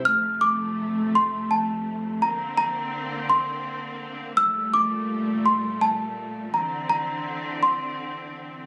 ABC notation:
X:1
M:6/8
L:1/8
Q:3/8=55
K:F
V:1 name="Celesta"
f' d'2 c' a2 | b b2 c'2 z | e' d'2 c' a2 | b b2 c'2 z |]
V:2 name="String section" clef=bass
[F,,C,A,]6 | [D,B,C]6 | [B,,G,A,]6 | [D,E,C]6 |]